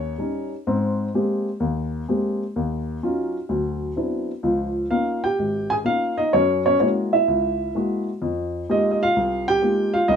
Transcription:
0.00 0.13 D#2 medium
0.00 0.18 C#4 medium
0.00 0.48 C#5 medium
0.18 0.52 G3 soft
0.18 0.53 C#4 soft
0.18 0.53 D#4 medium
0.67 1.08 G#2 medium
0.67 1.08 C4 medium
1.14 1.48 G#3 medium
1.14 1.48 A#3 soft
1.14 1.48 C4 soft
1.14 1.48 G4 medium
1.60 2.01 D#2 medium
2.08 2.42 G#3 soft
2.08 2.42 A#3 soft
2.08 2.42 C4 soft
2.08 2.42 G4 soft
2.56 2.96 D#2 medium
3.03 3.36 F#3 medium
3.03 3.36 C#4 soft
3.03 3.36 D#4 soft
3.03 3.36 F4 medium
3.49 3.90 D2 medium
3.49 3.90 F#3 medium
3.96 4.30 F#3 soft
3.96 4.30 B3 soft
3.96 4.30 C4 soft
3.96 4.30 D4 soft
3.96 4.31 E4 soft
4.43 4.84 C#2 medium
4.43 4.85 F3 medium
4.91 5.25 A#3 medium
4.91 5.25 C#4 soft
4.91 5.25 D#4 soft
4.91 5.25 F4 medium
4.91 5.21 F5 medium
5.24 5.68 G4 medium
5.24 5.67 G5 medium
5.39 5.80 G#1 medium
5.70 5.77 G#4 medium
5.70 5.75 G#5 medium
5.84 6.18 A#3 soft
5.84 6.19 C#4 soft
5.84 6.17 D#4 soft
5.84 6.19 F4 medium
5.84 6.19 F5 medium
6.18 6.32 D#4 medium
6.18 6.33 D#5 medium
6.33 6.74 F#2 medium
6.33 6.63 C#4 medium
6.33 6.63 C#5 medium
6.66 6.80 C#4 medium
6.66 6.79 C#5 medium
6.80 7.14 G#3 soft
6.80 7.14 A#3 soft
6.80 6.89 C#4 medium
6.80 7.12 E4 soft
6.80 7.14 F#4 medium
6.80 6.87 C#5 medium
7.13 7.74 E4 medium
7.13 8.03 E5 medium
7.28 7.68 C#2 medium
7.75 8.09 G#3 soft
7.75 8.08 A#3 soft
7.75 8.08 E4 soft
7.75 8.09 F#4 medium
8.22 8.62 F2 medium
8.69 9.02 G#3 medium
8.69 9.03 A#3 soft
8.69 9.02 D#4 soft
8.69 9.02 F4 soft
8.69 9.03 G4 medium
8.69 8.90 D#5 medium
8.91 9.01 D#5 medium
9.03 9.46 F4 medium
9.03 9.45 F5 loud
9.16 9.57 C2 medium
9.48 9.62 G4 medium
9.48 9.96 G5 loud
9.62 9.96 G#3 soft
9.62 9.96 A#3 soft
9.62 9.96 D#4 soft
9.62 9.94 F4 soft
9.62 9.96 G4 soft
9.94 10.08 F4 medium
9.94 10.09 F5 medium
10.08 10.16 C2 medium
10.08 10.16 D#4 medium
10.08 10.16 D#5 medium

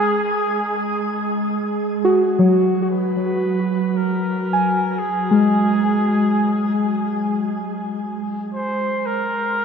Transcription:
0.00 2.00 G#3 medium
0.00 0.81 G#4 medium
2.05 6.13 F#4 medium
2.39 6.47 F#3 medium
2.39 2.89 F#4 medium
2.91 3.98 B4 medium
3.97 5.00 A#4 medium
4.53 8.58 G#5 medium
4.99 7.02 G#4 medium
5.31 9.35 G#3 medium
8.55 9.08 C5 medium
9.06 9.65 A#4 medium

